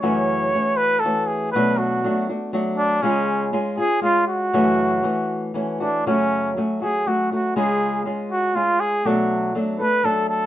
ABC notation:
X:1
M:3/4
L:1/8
Q:1/4=120
K:F#m
V:1 name="Trumpet"
c3 B A G | B F2 z2 D | C2 z G ^E F- | F4 z D |
C2 z G F F | G2 z F ^E G | F2 z B A A |]
V:2 name="Nylon-string guitar"
[F,,C,E,A,CF]2 [E,A,CF]2 [E,A,CF]2 | [B,,F,A,DF]2 [F,A,DF] [A,DF] [F,A,DF]2 | [C,G,C^EG]2 [G,CEG] [CEG] [G,CEG]2 | [F,,C,E,A,CF]2 [E,A,CF]2 [E,A,CF] [E,A,CF] |
[F,,C,F,A,CF]2 [F,A,CF] [F,A,CF] [F,A,CF] [F,A,CF] | [C,G,C^EG]2 [G,CEG]2 [G,CEG]2 | [B,,F,A,DA]2 [F,A,DA] [A,DA] [F,A,DA]2 |]